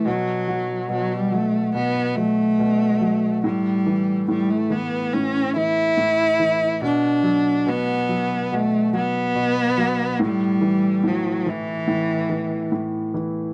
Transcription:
X:1
M:4/4
L:1/16
Q:1/4=71
K:Bm
V:1 name="Cello"
F,4 F, G, A,2 B,2 A,6 | G,4 G, A, B,2 C2 E6 | D4 B,4 A,2 B,6 | G,4 F,2 E,6 z4 |]
V:2 name="Grand piano" clef=bass
B,,2 F,2 B,,2 F,2 B,,2 F,2 B,,2 F,2 | A,,2 E,2 A,,2 E,2 A,,2 E,2 A,,2 E,2 | B,,2 F,2 B,,2 F,2 B,,2 F,2 B,,2 F,2 | A,,2 E,2 A,,2 E,2 A,,2 E,2 A,,2 E,2 |]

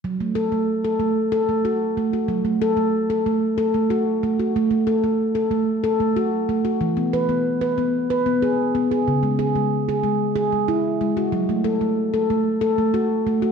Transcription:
X:1
M:7/8
L:1/16
Q:1/4=93
K:F#m
V:1 name="Handpan"
z A, A A,2 A A,2 A A, F2 A, F | z A, A A,2 A A,2 A A, F2 A, F | z A, A A,2 A A,2 A A, F2 A, F | z B, B B,2 B B,2 B B, G2 B, G |
z G, G G,2 G G,2 G G, E2 G, F | z A, A A,2 A A,2 A A, F2 A, F |]
V:2 name="Handpan" clef=bass
F,12- F,2 | F,12- F,2 | A,12- A,2 | E,12- E,2 |
C,12- C,2 | F,12- F,2 |]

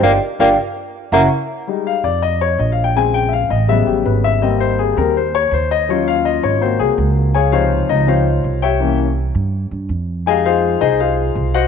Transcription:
X:1
M:4/4
L:1/8
Q:1/4=164
K:Fm
V:1 name="Vibraphone"
[=dfg] z [dfg] z3 [_f_gb] z | z8 | z8 | z8 |
z8 | z8 | z8 | z8 |]
V:2 name="Grand piano"
[=DFG] z [DFG] z3 [_D_F_G] z | z2 f =d e _d (3e f g | a g [=ef] _e =e G =B e | e c A B c d c e |
d f e d c A z2 | [Adfa] [Fcdf]2 [Ee] [Fcdf]3 [Gd=eg]- | [Gd=eg] z6 z | [Aefa] [FAcf]2 [EAce] [FAcf]3 [_Gce_g] |]
V:3 name="Grand piano"
z8 | z [G,A,E] z6 | [D,A,C]3 z [^C,^F,G,=B,]4 | [G,B,C]3 [G,B,C] z4 |
[_G,DF]4 [B,C_G]4 | z [C,F,E]3 [F,CE] z3 | [=E,B,D] z6 z | [A,EG]3 z4 z |]
V:4 name="Tenor saxophone"
B, z B, z3 B, z | z8 | z8 | z8 |
z8 | z8 | z8 | z8 |]
V:5 name="Upright bass" clef=bass
G,,, z G,,, z3 _G,,, z | z3 F,,3 B,,,2- | B,,,3 =A,,,2 A,,, _A,,,2- | A,,,3 E,,3 E,,2- |
E,,3 A,,,2 C,, D,,2- | D,,3 D,,3 C,,2- | C,,3 G,,2 G,, F,,2- | F,,3 C,,3 C,,2 |]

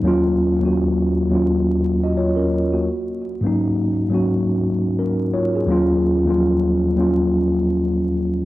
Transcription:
X:1
M:4/4
L:1/16
Q:"Swing 16ths" 1/4=85
K:Ebm
V:1 name="Tine electric piano"
z8 z3 [Ge] [Fd] [DB]2 [B,G]- | [B,G] z8 z3 [DB]2 [Fd] A- | A z12 z3 |]
V:2 name="Tine electric piano"
[E,,G,B,DF]2 z [E,,G,B,DG]3 z [E,,G,B,DF]6 z3 | z3 [A,,G,B,DE]3 z [A,,G,B,DG]2 z6 z | [E,,G,B,DF]2 z [E,,F,G,B,DF]3 z [E,,G,B,DF]6 z3 |]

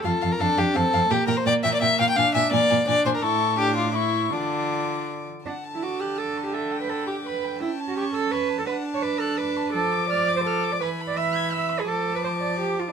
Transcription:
X:1
M:3/4
L:1/16
Q:1/4=168
K:Dm
V:1 name="Violin"
f2 f2 f2 f2 f2 f2 | g2 g2 g2 g2 g2 g2 | _a2 a2 a2 a2 a2 a2 | ^c'4 d'4 c'4 |
d'8- d'2 z2 | [K:D] a12 | g12 | a12- |
a12 | [K:Ddor] d'12 | b12 | d'12 |]
V:2 name="Violin"
A3 B A2 G2 A4 | G2 B c d2 e d e2 f g | f2 e2 d4 d2 c B | A4 G2 F2 E4 |
D8 z4 | [K:D] f2 a2 d'2 f'2 d'2 a2 | e2 g2 b2 d'2 b2 g2 | g2 a2 c'2 e'2 c'2 a2 |
f2 a2 d'2 f'2 d'2 a2 | [K:Ddor] a2 d'2 f'2 a'2 f'2 d'2 | ^g2 b2 e'2 ^g'2 e'2 b2 | a12 |]
V:3 name="Cello"
F,,2 F,,2 F,,2 F,,2 F,,2 F,,2 | B,,2 B,,2 B,,2 B,,2 B,,2 B,,2 | B,,2 B,,2 B,,2 B,,2 B,,2 B,,2 | A,,12 |
D,8- D,2 z2 | [K:D] D3 E F2 G2 A3 G | A3 B A2 G2 B4 | E3 F G2 A2 B3 A |
B3 c B2 A2 B4 | [K:Ddor] A4 d3 c A3 d | B3 d e4 e3 ^G | A3 B c2 d2 G2 F D |]
V:4 name="Viola"
F4 D4 C4 | B,12 | D4 B,4 D4 | E4 D4 E4 |
F8- F2 z2 | [K:D] D,12- | D,12 | C12 |
D12 | [K:Ddor] F,12 | E,12 | F,12 |]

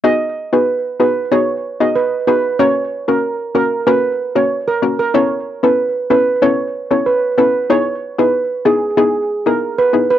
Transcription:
X:1
M:4/4
L:1/16
Q:1/4=94
K:B
V:1 name="Steel pan"
d z2 B z2 B z c z2 d B z B z | c z2 A z2 A z B z2 c z A z A | c z2 B z2 B z c z2 c B z B z | c z2 B z2 G z G z2 A z B z B |]
V:2 name="Synth pluck"
[B,DFG]3 [B,DFG]3 [B,DFG]2 [B,DFG] z2 [B,DFG] z2 [B,DFG] z | [A,CFA]3 [A,CFA]3 [A,CFA]2 [A,CFA] z2 [A,CFA] z2 [A,CFA] z | [B,CE=A]3 [B,CEA]3 [B,CEA]2 [B,CEA] z2 [B,CEA] z2 [B,CEA] z | [B,DEG]3 [B,DEG]3 [B,DEG]2 [B,DEG] z2 [B,DEG] z2 [B,DEG] z |]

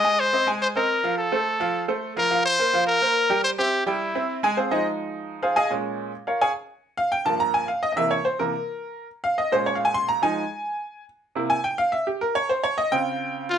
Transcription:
X:1
M:4/4
L:1/16
Q:1/4=212
K:Fm
V:1 name="Trumpet"
e2 c6 c2 B6 | =A8- A2 z4 B2- | B2 c6 B8 | c2 G4 =E8 z2 |
z16 | z16 | z16 | z16 |
z16 | z16 | z16 | z12 z2 F2 |]
V:2 name="Upright piano"
[A,Aa]4 [Cce]2 [A,Aa]4 [Cce]4 [F,Ff]2- | [F,Ff]2 [=A,=Ac]4 [F,Ff]4 [A,Ac]4 [F,Ff]2 | [F,Ff]4 [B,Bc]2 [F,Ff]4 [B,Bc]4 [G,Gg]2- | [G,Gg]2 [Cc=e]4 [G,Gg]4 [Cce]4 [A,Aa]2 |
[CFAc]2 [EAce]2 z8 [FAcf]2 [Aefa]2 | z8 [FBdf]2 [Adfa]2 z4 | z2 f2 g2 =a2 b2 _a2 f2 e2 | [e=e]2 d2 c2 B8- B2 |
z2 f2 e2 c2 (3d2 f2 a2 c'2 b2 | a12 z4 | z2 a2 g2 f2 =e2 G2 B2 d2 | c2 d2 e2 g8- g z |]
V:3 name="Upright piano" clef=bass
z16 | z16 | z16 | z16 |
z2 [F,A,]12- [F,A,]2 | [B,,A,D]6 z8 z2 | z6 [G,,F,B,]6 z4 | [C,=E,B,]2 z4 [C,E,B,]2 z8 |
z6 [B,,A,D]8- [B,,A,D]2 | [F,A,E]2 z12 z2 | [C,B,=E]2 z12 z2 | z6 [D,CF]8- [D,CF]2 |]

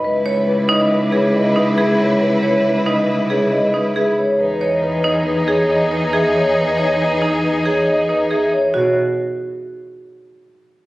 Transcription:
X:1
M:5/4
L:1/8
Q:1/4=138
K:B
V:1 name="Vibraphone"
B c B d B c d B e c | B c B d B c d B e c | B c B d B c d B e c | B c B d B c d B e c |
c z8 z |]
V:2 name="Marimba"
z c z D z G z D G z | z c z D z G z D G z | z c z D z G z D G z | z c z D z G z D G z |
F z8 z |]
V:3 name="Violin section"
[EB]8- [EB]2- | [EB]8- [EB] z | [DG]8- [DG]2- | [DG]8- [DG] z |
z8 z2 |]
V:4 name="French horn"
E8- E2- | E8- E z | D8- D2- | D8- D z |
z8 z2 |]
V:5 name="Cello" clef=bass
C,,8- C,,2- | C,,8- C,,2 | E,,8- E,,2- | E,,8- E,,2 |
B,, z8 z |]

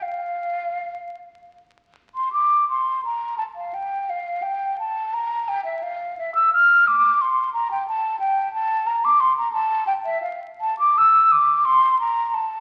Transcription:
X:1
M:6/8
L:1/16
Q:3/8=58
K:F
V:1 name="Flute"
f6 z4 z c' | d'2 c'2 b2 a f g2 f2 | g2 a2 b2 g e f2 e e' | f'2 d'2 c'2 b g a2 g2 |
a2 b d' c' b a2 g e f z | a d' e'2 d'2 c'2 b2 a2 |]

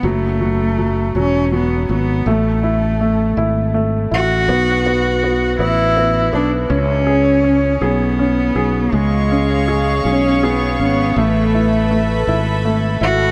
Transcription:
X:1
M:6/8
L:1/8
Q:3/8=54
K:F#m
V:1 name="String section"
z6 | z6 | z6 | z6 |
[Gc^ec']6 | [ABeb]6 |]
V:2 name="Cello"
A,3 C B, B, | A,4 z F- | F3 E2 D | C3 B,3 |
G,3 C B, B, | A,4 z F |]
V:3 name="Grand piano"
F, F, F, F, F, F, | A, E A, E A, E | B, B, B, B, B, B, | C G C G C G |
G, C G C G C | A, E A, E A, E |]
V:4 name="Fretless electric bass" clef=bass
F,,,3 E,,,2 G,,, | A,,,3 G,,,2 A,,, | B,,,3 A,,,2 B,,, | C,,3 B,,,2 B,,, |
C,,3 B,,,2 G,,, | A,,,3 G,,,2 G,,, |]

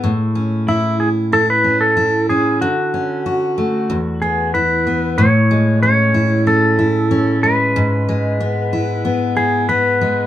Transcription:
X:1
M:4/4
L:1/16
Q:1/4=93
K:A
V:1 name="Electric slide guitar"
z4 E2 G2 A B2 A3 G2 | F8- F2 G2 B4 | c4 c4 A6 B2- | B8- B2 G2 B4 |]
V:2 name="Steel-string acoustic guitar"
A,,2 C2 E4 E2 C2 E2 C2 | D,2 C2 F2 A,2 E,,2 B,2 E2 B,2 | A,,2 G,2 C2 E2 C2 E2 C2 G,2 | G,,2 G,2 B,2 E2 B,2 E2 B,2 G,2 |]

